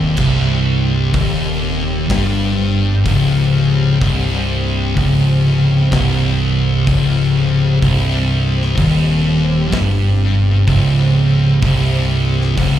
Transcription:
0.00 0.16 D#1 loud
0.00 0.17 D#2 loud
0.00 12.79 C3 medium
0.00 12.79 C4 medium
0.00 12.79 G4 medium
0.17 1.10 C1 loud
0.17 1.12 C2 loud
0.17 kick loud
0.17 crash loud
1.13 2.06 D#1 loud
1.13 2.08 D#2 loud
1.13 kick loud
1.13 open hi-hat medium
2.09 3.02 G1 medium
2.09 3.04 G2 loud
2.09 kick loud
2.09 snare loud
2.09 open hi-hat medium
3.04 3.97 C#1 medium
3.04 4.00 C#2 loud
3.04 kick loud
3.04 open hi-hat medium
4.00 4.93 C1 loud
4.00 4.95 C2 loud
4.00 kick loud
4.00 open hi-hat medium
4.96 5.88 C#1 loud
4.96 5.90 C#2 loud
4.96 kick loud
4.96 open hi-hat medium
5.91 6.83 C1 loud
5.91 6.86 C2 loud
5.91 kick loud
5.91 snare loud
5.91 open hi-hat medium
6.86 7.78 C#1 loud
6.86 7.81 C#2 loud
6.86 kick loud
6.86 open hi-hat medium
7.81 8.74 C1 loud
7.81 8.76 C2 loud
7.81 kick loud
7.81 open hi-hat medium
8.62 snare soft
8.76 9.68 D#1 loud
8.76 9.71 D#2 loud
8.76 kick loud
8.76 open hi-hat medium
9.71 10.63 G1 medium
9.71 10.66 G2 loud
9.71 kick loud
9.71 snare loud
9.71 open hi-hat medium
10.67 11.59 C#1 medium
10.67 11.61 C#2 loud
10.67 kick loud
10.67 open hi-hat medium
11.62 12.53 C1 loud
11.62 12.56 C2 loud
11.62 kick loud
11.62 open hi-hat medium
12.41 snare soft
12.56 12.79 C#1 loud
12.56 12.79 C#2 loud
12.56 kick loud
12.56 open hi-hat medium

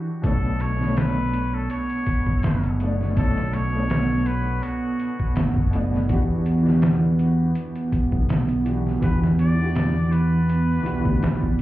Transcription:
0.00 0.26 E3 medium
0.00 0.25 D4 medium
0.00 0.26 F#4 medium
0.00 0.26 G4 medium
0.22 1.67 B1 loud
0.22 0.75 B2 medium
0.22 0.75 A3 medium
0.22 11.62 B3 medium
0.22 0.76 D4 medium
0.22 0.63 A4 loud
0.22 kick loud
0.22 closed hi-hat medium
0.26 0.77 C#5 medium
0.60 0.99 C#5 loud
0.60 closed hi-hat medium
0.76 2.74 B2 medium
0.76 2.76 A3 medium
0.81 2.77 D4 medium
0.81 snare soft
0.85 2.78 C#5 medium
0.97 1.56 B4 loud
0.97 snare loud
0.97 closed hi-hat medium
1.33 closed hi-hat medium
1.55 1.70 A4 medium
1.70 2.76 C#5 loud
1.70 closed hi-hat medium
1.90 closed hi-hat soft
2.06 kick loud
2.06 closed hi-hat medium
2.26 3.14 F#1 medium
2.26 kick medium
2.43 snare loud
2.43 closed hi-hat medium
2.63 closed hi-hat soft
2.79 3.12 B2 medium
2.79 3.13 A3 medium
2.79 3.14 D4 medium
2.79 closed hi-hat medium
2.83 3.14 D5 medium
3.01 snare soft
3.16 4.60 B1 loud
3.16 3.68 B2 medium
3.16 3.69 A3 medium
3.16 3.69 D4 medium
3.16 3.55 A4 loud
3.16 3.70 C#5 medium
3.16 kick loud
3.16 closed hi-hat medium
3.38 snare soft
3.53 4.28 C#5 loud
3.53 closed hi-hat medium
3.70 5.67 B2 medium
3.70 5.69 A3 medium
3.76 5.70 D4 medium
3.76 5.72 C#5 medium
3.90 snare loud
3.90 closed hi-hat medium
4.26 4.65 B4 loud
4.26 closed hi-hat medium
4.63 5.36 F#4 medium
4.63 closed hi-hat medium
5.00 closed hi-hat medium
5.20 kick medium
5.36 6.07 F#1 medium
5.36 snare loud
5.36 closed hi-hat medium
5.56 kick loud
5.71 6.05 B2 medium
5.71 6.05 A3 medium
5.71 6.06 D4 medium
5.71 closed hi-hat medium
5.76 6.07 D5 medium
5.94 snare soft
6.09 7.53 E2 loud
6.09 6.61 E3 medium
6.09 6.62 D4 medium
6.09 6.62 F#4 medium
6.09 kick loud
6.09 closed hi-hat medium
6.13 6.63 G4 medium
6.46 closed hi-hat medium
6.62 8.60 E3 medium
6.62 8.61 D4 medium
6.67 8.63 F#4 medium
6.67 snare soft
6.71 8.64 G4 medium
6.82 snare loud
6.82 closed hi-hat medium
7.19 closed hi-hat medium
7.55 closed hi-hat medium
7.75 closed hi-hat soft
7.92 kick loud
7.92 closed hi-hat medium
8.12 8.99 B1 medium
8.12 kick medium
8.29 snare loud
8.29 closed hi-hat medium
8.49 closed hi-hat soft
8.65 8.98 E3 medium
8.65 8.98 D4 medium
8.65 8.99 F#4 medium
8.65 closed hi-hat medium
8.69 9.00 G4 medium
8.87 snare soft
9.00 10.85 E2 loud
9.00 9.53 E3 medium
9.00 9.54 D4 medium
9.00 9.54 F#4 medium
9.00 9.20 B4 loud
9.00 kick loud
9.00 closed hi-hat loud
9.05 9.55 G4 medium
9.24 snare soft
9.39 10.13 D5 loud
9.39 closed hi-hat medium
9.55 10.80 E3 medium
9.55 10.81 D4 medium
9.60 10.83 F#4 medium
9.60 10.84 G4 medium
9.75 snare loud
9.75 closed hi-hat medium
10.12 11.58 B4 loud
10.12 closed hi-hat medium
10.49 closed hi-hat medium
10.83 11.02 B1 medium
10.83 10.99 E3 medium
10.83 11.00 D4 medium
10.83 11.00 F#4 medium
10.83 closed hi-hat medium
10.87 11.01 G4 medium
11.00 11.62 E3 medium
11.00 11.62 D4 medium
11.05 11.20 D2 medium
11.05 11.62 F#4 medium
11.05 kick medium
11.09 11.62 G4 medium
11.23 snare loud
11.23 closed hi-hat medium
11.42 kick loud

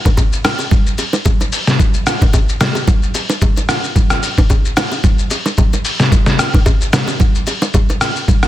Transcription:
0.05 kick medium
0.05 low bongo medium
0.05 shaker soft
0.17 kick medium
0.17 high bongo medium
0.17 shaker medium
0.33 shaker medium
0.44 cross-stick loud
0.44 open hi-hat medium
0.44 low bongo medium
0.44 shaker medium
0.59 high bongo medium
0.59 shaker medium
0.71 kick loud
0.71 low conga medium
0.71 shaker medium
0.86 shaker medium
0.98 open hi-hat medium
0.98 high bongo medium
0.98 shaker medium
1.13 low bongo medium
1.13 shaker medium
1.25 kick loud
1.25 high bongo medium
1.25 low conga medium
1.25 shaker medium
1.41 low bongo medium
1.41 shaker medium
1.52 open hi-hat medium
1.52 shaker loud
1.67 snare medium
1.67 shaker medium
1.79 kick loud
1.79 low conga medium
1.79 shaker medium
1.94 shaker medium
2.06 cross-stick loud
2.06 open hi-hat medium
2.06 shaker loud
2.21 kick medium
2.21 low bongo medium
2.21 shaker soft
2.33 kick medium
2.33 high bongo medium
2.33 shaker medium
2.49 shaker medium
2.61 cross-stick loud
2.61 snare medium
2.61 open hi-hat medium
2.61 low bongo medium
2.61 shaker loud
2.75 high bongo medium
2.75 shaker medium
2.88 kick loud
2.88 low conga medium
2.88 shaker medium
3.03 shaker medium
3.14 open hi-hat medium
3.14 high bongo medium
3.14 shaker medium
3.30 low bongo medium
3.30 shaker medium
3.41 kick loud
3.41 high bongo medium
3.41 low conga medium
3.41 shaker medium
3.57 low bongo medium
3.57 shaker medium
3.69 cross-stick medium
3.69 open hi-hat medium
3.69 shaker medium
3.84 shaker soft
3.96 kick loud
3.96 low conga medium
3.96 shaker medium
4.10 cross-stick loud
4.10 shaker medium
4.23 open hi-hat medium
4.23 shaker loud
4.37 kick medium
4.37 low bongo medium
4.37 shaker soft
4.50 kick medium
4.50 high bongo medium
4.50 shaker medium
4.65 shaker medium
4.77 cross-stick loud
4.77 open hi-hat medium
4.77 low bongo medium
4.77 shaker loud
4.92 high bongo medium
4.92 shaker medium
5.04 kick loud
5.04 low conga medium
5.04 shaker medium
5.19 shaker medium
5.30 open hi-hat medium
5.30 high bongo medium
5.30 shaker medium
5.46 low bongo medium
5.46 shaker medium
5.57 kick loud
5.57 high bongo medium
5.57 low conga medium
5.57 shaker medium
5.73 low bongo medium
5.73 shaker medium
5.85 open hi-hat medium
5.85 shaker loud
6.00 snare medium
6.00 shaker medium
6.12 kick loud
6.12 low conga medium
6.12 shaker medium
6.26 snare medium
6.26 shaker medium
6.39 cross-stick loud
6.39 open hi-hat medium
6.39 shaker loud
6.53 kick medium
6.53 low bongo medium
6.53 shaker soft
6.66 kick medium
6.66 high bongo medium
6.66 shaker medium
6.81 shaker medium
6.93 cross-stick loud
6.93 snare medium
6.93 open hi-hat medium
6.93 low bongo medium
6.93 shaker loud
7.08 high bongo medium
7.08 shaker medium
7.20 kick loud
7.20 low conga medium
7.20 shaker medium
7.35 shaker medium
7.47 open hi-hat medium
7.47 high bongo medium
7.47 shaker medium
7.62 low bongo medium
7.62 shaker medium
7.74 kick loud
7.74 high bongo medium
7.74 low conga medium
7.74 shaker medium
7.89 low bongo medium
7.89 shaker medium
8.01 cross-stick medium
8.01 open hi-hat medium
8.01 shaker medium
8.16 shaker medium
8.28 kick loud
8.28 low conga medium
8.28 shaker medium
8.43 cross-stick loud
8.43 shaker medium

